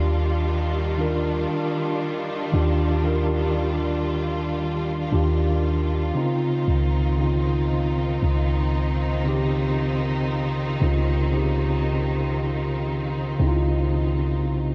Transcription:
Already playing: 808-style bass D#2, tine electric piano D#3 D4 F4 G4, string section D#3 G3 D4 F4
0.97 tine electric piano D#3 D4 F4 A#4
2.52 808-style bass D#2, tine electric piano D#3 D4 F4 G4
3.04 tine electric piano D#3 D4 F4 A#4
5.11 808-style bass D#2, tine electric piano D#3 D4 F4 G4
6.14 tine electric piano C#3 C4 D#4 F4, string section D#3 C4 D#4
6.68 808-style bass C#2
7.18 tine electric piano C#3 C4 D#4 F4
8.23 808-style bass C#2
9.24 tine electric piano C#3 C4 D#4 G4
10.80 808-style bass C#2, tine electric piano C#3 C4 D#4 F4
11.31 tine electric piano C#3 C4 D#4
11.35 tine electric piano G4
13.38 808-style bass C#2, tine electric piano C#3 C4 D#4 E4
13.49 tine electric piano F4
14.43 808-style bass C2

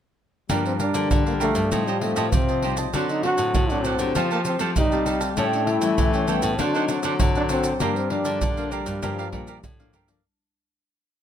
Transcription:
0.49 nylon-string guitar G2 F3 A#3 D4, trombone G3 A#3, cavaquinho G4 A#4 D5 F5, pandeiro, maracas, surdo
0.65 trombone C4, pandeiro, maracas
0.79 trombone D4, cavaquinho G4 A#4 D5 F5, pandeiro, maracas
0.94 nylon-string guitar D3 F3 A#3 D4, pandeiro, maracas
1.11 nylon-string guitar D3, pandeiro, maracas, surdo
1.26 trombone A#3, cavaquinho A#4 D5 F5, pandeiro, maracas
1.40 nylon-string guitar F3 A#3 D4, trombone A3, cavaquinho G4 A#4 D5 F5, pandeiro, maracas
1.55 nylon-string guitar G2, cavaquinho A#4 D5 F5, pandeiro, maracas
1.71 nylon-string guitar A2 G3 C4 D#4, trombone F3, cavaquinho G4 C5 D#5 A5, pandeiro, maracas, surdo
1.87 trombone G3, cavaquinho G4 C5 D#5 A5, pandeiro, maracas
2.01 nylon-string guitar G3 C4 D#4, trombone A3, cavaquinho G4 C5 D#5 A5, pandeiro
2.16 nylon-string guitar A2, cavaquinho G4 C5 D#5 A5, pandeiro, maracas
2.32 nylon-string guitar A2 C3, trombone C4, pandeiro, maracas, surdo
2.49 cavaquinho C5 D#5 A5, pandeiro, maracas
2.62 nylon-string guitar G3 C4 D#4, cavaquinho G4 C5 D#5 A5, pandeiro
2.77 cavaquinho C5 D#5 A5, pandeiro, maracas
2.93 nylon-string guitar D3 A3 C4 F#4, trombone F#3 D4, cavaquinho D4 C5 D5 F#5, pandeiro, maracas, surdo
3.09 trombone D#4, pandeiro, maracas
3.23 nylon-string guitar A3 C4 F#4, cavaquinho D4 C5 D5 F#5, trombone F#4, pandeiro
3.38 nylon-string guitar A2, pandeiro, maracas
3.54 nylon-string guitar A2, pandeiro, maracas, surdo
3.70 nylon-string guitar A3 C4 F#4, trombone D4, cavaquinho C5 D5 F#5, pandeiro, maracas
3.84 trombone C4, cavaquinho D4 C5 D5 F#5, pandeiro, maracas
3.99 nylon-string guitar D3 A3 C4 G4, cavaquinho C5 D5 F#5, pandeiro, maracas
4.15 trombone F3, nylon-string guitar F3, cavaquinho G4 A4 F5 A5, pandeiro, maracas, surdo
4.31 trombone A#3, cavaquinho G4 A4 F5 A5, pandeiro, maracas
4.45 trombone C4, cavaquinho G4 A4 F5 A5, pandeiro, maracas
4.59 nylon-string guitar F3 A3 C4 G4, cavaquinho G4 A4 F5 A5, pandeiro, maracas
4.76 nylon-string guitar C3, trombone G3 D#4, pandeiro, maracas, surdo
4.92 nylon-string guitar A3 C4 G4, cavaquinho G4 F5 A5, pandeiro, maracas
5.06 cavaquinho G4 A4 F5 A5, pandeiro, maracas
5.20 cavaquinho G4 F5 A5, pandeiro, maracas
5.37 nylon-string guitar A2 G3 C#4 E4, trombone A3 C#4, cavaquinho G4 A4 C#5 G5, pandeiro, maracas, surdo
5.53 trombone D4, pandeiro, maracas
5.67 trombone E4, cavaquinho G4 A4 C#5 G5, pandeiro
5.82 nylon-string guitar E3 G3 C#4 E4, pandeiro, maracas
5.98 nylon-string guitar E3, pandeiro, maracas, surdo
6.14 trombone C#4, cavaquinho A4 C#5 G5, pandeiro, maracas
6.28 nylon-string guitar G3 C#4 E4, trombone B3, cavaquinho G4 A4 C#5 G5, pandeiro, maracas
6.42 nylon-string guitar A2, cavaquinho A4 C#5 G5, pandeiro, maracas
6.58 nylon-string guitar D3 A3 C4 F#4, trombone F#3 D4, cavaquinho D4 C5 D5 F#5, pandeiro, maracas, surdo
6.75 cavaquinho D4 C5 D5 F#5, trombone D#4, pandeiro, maracas
6.89 nylon-string guitar A3 C4 F#4, cavaquinho D4 C5 D5 F#5, pandeiro, maracas
7.03 nylon-string guitar D3, cavaquinho D4 C5 D5 F#5, pandeiro, maracas
7.20 nylon-string guitar A2 D3, pandeiro, maracas, surdo
7.35 trombone D4, cavaquinho C5 D5 F#5, pandeiro, maracas
7.49 nylon-string guitar A3 C4 F#4, trombone C4, cavaquinho D4 C5 D5 F#5, pandeiro, maracas
7.64 cavaquinho C5 D5 F#5, pandeiro, maracas
7.80 nylon-string guitar G2 F3 A#3 D4, trombone G3 A#3, cavaquinho G4 A#4 D5 F5, pandeiro, maracas, surdo
7.96 trombone C4, pandeiro, maracas
8.10 nylon-string guitar F3 A#3 D4, trombone D4, cavaquinho G4 A#4 D5 F5, pandeiro
8.25 nylon-string guitar D3, pandeiro, maracas
8.41 nylon-string guitar D3, pandeiro, maracas, surdo
8.57 nylon-string guitar F3 A#3 D4, cavaquinho A#4 D5 F5, pandeiro, maracas
8.72 trombone G3, cavaquinho G4 A#4 D5 F5, pandeiro, maracas
8.86 nylon-string guitar G2, cavaquinho A#4 D5 F5, pandeiro, maracas
9.02 nylon-string guitar G2 F3 A#3 D4, trombone F3, cavaquinho G4 A#4 D5 F5, pandeiro, maracas, surdo
9.18 cavaquinho G4 A#4 D5 F5, pandeiro, maracas
9.32 nylon-string guitar A#2 F3 A#3 D4, cavaquinho G4 A#4 D5 F5, pandeiro, surdo
9.47 cavaquinho G4 A#4 D5 F5, pandeiro, maracas
9.63 nylon-string guitar A2 D3, trombone D3, pandeiro, maracas, surdo
9.79 nylon-string guitar F3 A#3 D4, cavaquinho A#4 D5 F5, pandeiro, maracas
9.93 nylon-string guitar G2, cavaquinho G4 A#4 D5 F5, pandeiro, maracas
10.08 nylon-string guitar F3 A#3 D4, cavaquinho A#4 D5 F5, pandeiro, maracas

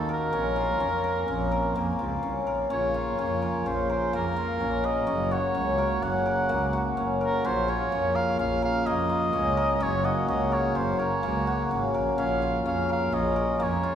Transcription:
Already playing: double bass D#2, harmonium D#3 A#3 F#4, hammered dulcimer A#3 C#4 D#4 F4 G#4, oboe A4
0.09 hammered dulcimer A#4
0.13 oboe A#4
0.32 double bass A#1, harmonium A#3 C4 C#4, hammered dulcimer C#4
0.56 hammered dulcimer F4
0.80 double bass F2, hammered dulcimer C#4
1.04 hammered dulcimer A#4
1.28 double bass A#1, hammered dulcimer C#4
1.52 hammered dulcimer A#4
1.76 double bass F2, hammered dulcimer A#3
1.99 double bass C#2, hammered dulcimer F4
2.23 double bass C2, hammered dulcimer C#4
2.47 double bass A#1, hammered dulcimer A#4
2.70 double bass A#1, harmonium C#3 A#3 F4, hammered dulcimer C#4, oboe C#5
2.94 hammered dulcimer F4
3.19 double bass F2, hammered dulcimer C#4, oboe C#5
3.42 hammered dulcimer A#4
3.66 double bass A#1, hammered dulcimer C#4, oboe C5
3.90 hammered dulcimer A#4, oboe C5
4.13 double bass F2, hammered dulcimer A#3, oboe A#4
4.36 hammered dulcimer F4
4.60 double bass A#1, hammered dulcimer C#4
4.84 hammered dulcimer A#4, oboe D#5
5.07 double bass F#1, harmonium A#3 F#4, hammered dulcimer C#4
5.31 hammered dulcimer F#4, oboe C#5
5.55 double bass C#2, hammered dulcimer C#4
5.78 hammered dulcimer A#4
6.02 double bass F#1, hammered dulcimer C#4, oboe F#5
6.26 hammered dulcimer A#4
6.49 double bass C#2, hammered dulcimer A#3
6.73 hammered dulcimer F#4
6.97 double bass F#1, hammered dulcimer C#4
7.21 hammered dulcimer A#4, oboe A#4
7.45 double bass A#1, hammered dulcimer C#4, harmonium F4, oboe C5
7.68 hammered dulcimer F4, oboe C#5
7.92 double bass F2, hammered dulcimer C#4
8.15 hammered dulcimer A#4, oboe F5
8.39 double bass A#1, hammered dulcimer C#4, oboe F5
8.62 hammered dulcimer A#4, oboe F5
8.86 double bass F2, hammered dulcimer A#3, oboe D#5
9.09 hammered dulcimer F4
9.33 double bass C#2, hammered dulcimer C#4
9.57 hammered dulcimer A#4
9.80 double bass F#1, harmonium C#3 F#4, hammered dulcimer C#4, oboe C#5
10.04 hammered dulcimer F#4, oboe D#5
10.28 double bass C#2, hammered dulcimer C#4, oboe D#5
10.52 hammered dulcimer A#4, oboe C#5
10.75 double bass F#1, hammered dulcimer C#4, oboe C5
10.99 hammered dulcimer A#4, oboe C#5
11.23 double bass C#2, hammered dulcimer A#3
11.47 hammered dulcimer F#4
11.71 double bass G#1, hammered dulcimer C#4
11.94 double bass A#1, hammered dulcimer A#4
12.18 double bass A#1, hammered dulcimer C#4, harmonium F4, oboe F5
12.42 hammered dulcimer F4
12.65 double bass F2, hammered dulcimer C#4, oboe F5
12.89 hammered dulcimer A#4, oboe F5
13.12 double bass A#1, hammered dulcimer C#4, oboe D#5
13.36 hammered dulcimer A#4
13.60 double bass F2, hammered dulcimer A#3, oboe C#5
13.83 hammered dulcimer F4

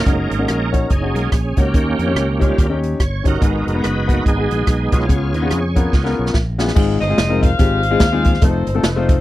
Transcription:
Already playing: tonewheel organ C#4 A#4
0.06 fingered electric bass F#1, tonewheel organ G#3 A#3 D#4, grand piano C#4 D#4 F#4 A#4, kick, closed hi-hat
0.31 fingered electric bass G#1, closed hi-hat
0.39 grand piano C#4 D#4 F#4 A#4
0.48 fingered electric bass A#1, cross-stick, closed hi-hat
0.72 grand piano C#4 D#4 F#4 C#5, kick, closed hi-hat
0.90 fingered electric bass F#1, tonewheel organ C#4 D#4 G#4, kick, closed hi-hat
1.02 grand piano C#4 D#4 F#4 G#4
1.14 fingered electric bass B1, tonewheel organ G#3 A#3 D#4, closed hi-hat
1.32 fingered electric bass A#1, kick, cross-stick, closed hi-hat
1.57 fingered electric bass C#2, tonewheel organ A#3 C#4 G4, grand piano C#4 D#4 F#4 C#5, kick, closed hi-hat
1.74 fingered electric bass D#2, grand piano D#3 C#4 D#4 G4 A#4, kick, closed hi-hat
1.99 fingered electric bass F2, closed hi-hat
2.06 grand piano C#4 D#4 G4 C#5
2.15 fingered electric bass C#2, cross-stick, closed hi-hat
2.39 tonewheel organ G3 C#4 F4, grand piano C#4 D#4 G4 C#5, kick, closed hi-hat
2.58 fingered electric bass D#2, kick, closed hi-hat
2.69 grand piano C#4 D#4 G4 C#5
2.83 closed hi-hat
3.00 fingered electric bass G1, tonewheel organ C#5, kick, cross-stick, closed hi-hat
3.24 fingered electric bass G1, grand piano C#4 D#4 G4 C#5, tonewheel organ D#4 F#4, kick, closed hi-hat
3.28 tonewheel organ A#4
3.34 cross-stick
3.40 fingered electric bass G#1, grand piano G#2 B3 D#4 F#4 G#4, tonewheel organ G#3 B3, kick, closed hi-hat
3.44 tonewheel organ F#4
3.67 fingered electric bass F1, closed hi-hat
3.74 grand piano B3 D#4 F#4 B4
3.84 fingered electric bass F#1, tonewheel organ D#4 F#4 B4, cross-stick, closed hi-hat
4.07 tonewheel organ A#3 B3 F#4, grand piano B3 D#4 F#4 B4, kick, closed hi-hat
4.26 fingered electric bass G#1, tonewheel organ B3 D#4 G#4, kick, closed hi-hat
4.37 grand piano B3 D#4 F#4 G#4
4.51 fingered electric bass A#1, closed hi-hat
4.67 fingered electric bass B1, kick, cross-stick, closed hi-hat
4.91 fingered electric bass B1, grand piano B3 D#4 F#4 B4, tonewheel organ F4 G#4 C#5, kick, closed hi-hat
5.01 cross-stick
5.08 fingered electric bass C#2, grand piano C#3 B3 C#4 F4 G#4, kick, closed hi-hat
5.34 fingered electric bass D#2, tonewheel organ B3 D#4 F4, closed hi-hat
5.42 grand piano B3 C#4 F4 G#4
5.51 fingered electric bass F2, cross-stick, closed hi-hat
5.76 grand piano B3 C#4 F4 A#4, kick, closed hi-hat
5.93 fingered electric bass C#2, tonewheel organ B3 D#4 F4, kick, snare
6.04 grand piano B3 C#4 F4 A#4, snare
6.19 fingered electric bass B1
6.26 snare
6.34 fingered electric bass A#1, kick, snare
6.58 grand piano B3 C#4 F4 G#4, snare
6.68 snare
6.75 fingered electric bass G#1, grand piano G#2 G#3 C4 D#4 F4 G#4, kick, crash
7.01 fingered electric bass G1, saxophone section C5 D#5, closed hi-hat
7.09 grand piano G#3 C4 D#4 F4 G#4
7.18 fingered electric bass F1, snare, closed hi-hat
7.29 grand piano G#3 C4 D#4 F4 A#4
7.42 saxophone section C5 F5, kick, closed hi-hat
7.58 fingered electric bass G#1, grand piano G#3 C4 D#4 F4 G4, kick, snare, closed hi-hat
7.83 closed hi-hat
7.91 grand piano G#3 C4 D#4 F4 G#4
8.00 fingered electric bass D#2, kick, snare, closed hi-hat
8.12 grand piano G#3 C4 D#4 F4 G#4
8.25 kick, closed hi-hat
8.34 snare
8.42 fingered electric bass F1, grand piano A3 C4 D#4 F4 A4, saxophone section D#4 A4 C5, kick, closed hi-hat
8.67 fingered electric bass G1, closed hi-hat
8.75 grand piano A3 C4 D#4 F4 A4
8.83 fingered electric bass F1, saxophone section D#4 A4 C5, snare, closed hi-hat
8.96 grand piano A3 C4 D#4 F4 C5
9.09 kick, closed hi-hat

